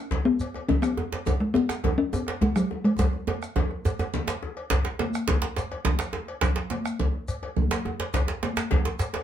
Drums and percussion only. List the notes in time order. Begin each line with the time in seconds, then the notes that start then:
0.11 bombo rim, bombo low, cowbell, djembe slap, djembe tone, djembe bass, low conga
0.25 djembe slap
0.40 cowbell, shekere
0.54 bombo rim, cowbell, djembe tone
0.69 bombo rim, bombo low, djembe slap, high conga, djembe bass, low conga
0.83 bombo rim, cowbell, shekere
0.97 djembe slap, djembe tone, high conga
1.12 bombo rim, cowbell, djembe slap
1.26 bombo rim, bombo low, cowbell, djembe slap, djembe tone, djembe bass, low conga, shekere
1.41 bombo rim, djembe tone
1.55 djembe tone, high conga
1.69 bombo rim, djembe slap, shekere
1.84 bombo rim, bombo low, cowbell, djembe slap, djembe tone, djembe bass, low conga
1.99 djembe slap
2.13 cowbell, djembe tone, shekere
2.27 bombo rim, cowbell, djembe slap
2.41 bombo rim, bombo low, djembe slap, high conga, djembe tone, djembe bass, low conga
2.56 bombo rim, cowbell, shekere
2.71 djembe slap, high conga, djembe tone
2.85 bombo rim, cowbell
2.98 bombo low, cowbell, djembe slap, djembe tone, low conga, djembe bass, shekere
3.13 djembe slap, djembe tone
3.27 cowbell, high conga, djembe tone
3.42 bombo rim, shekere
3.56 bombo rim, bombo low, cowbell, djembe slap, high conga, djembe tone, low conga, djembe bass
3.71 bombo rim, djembe slap, high conga
3.85 cowbell, high conga, djembe tone, shekere
3.99 bombo rim, cowbell, djembe tone, shekere
4.14 djembe slap, high conga, low conga, djembe bass, shekere
4.28 bombo rim, cowbell, djembe slap, shekere
4.43 djembe slap, djembe tone
4.57 bombo rim, cowbell
4.70 bombo rim, bombo low, cowbell, djembe slap, low conga, djembe bass, shekere
4.85 bombo rim, djembe slap, djembe tone
4.99 cowbell, djembe slap, high conga
5.14 bombo rim, shekere
5.28 bombo low, cowbell, djembe slap, djembe tone, low conga, djembe bass
5.42 djembe slap
5.57 cowbell, djembe slap, shekere
5.71 bombo rim, cowbell, djembe tone
5.85 bombo rim, bombo low, djembe slap, high conga, low conga, djembe bass
5.99 bombo rim, cowbell, djembe slap, shekere
6.13 djembe slap, high conga, djembe tone
6.28 bombo rim, cowbell
6.41 bombo rim, bombo low, cowbell, djembe slap, low conga, djembe bass, shekere
6.56 bombo rim, djembe slap, djembe tone
6.70 cowbell, djembe slap, high conga
6.86 bombo rim, shekere
7.00 bombo rim, bombo low, cowbell, djembe tone, low conga, djembe bass
7.14 djembe slap
7.28 cowbell, shekere
7.43 bombo rim, cowbell, djembe tone
7.57 bombo rim, bombo low, high conga, low conga, djembe bass
7.71 bombo rim, cowbell, djembe slap, shekere
7.85 djembe slap, djembe tone, high conga
8.00 bombo rim, cowbell, djembe slap
8.14 bombo rim, bombo low, cowbell, djembe slap, djembe bass, low conga, shekere
8.28 bombo rim, djembe slap, djembe tone
8.43 cowbell, djembe slap, high conga
8.57 bombo rim, djembe slap, shekere
8.71 bombo rim, bombo low, cowbell, djembe slap, djembe tone, djembe bass, low conga
8.85 djembe slap
8.99 cowbell, djembe slap, shekere
9.13 bombo rim, cowbell, djembe slap, djembe tone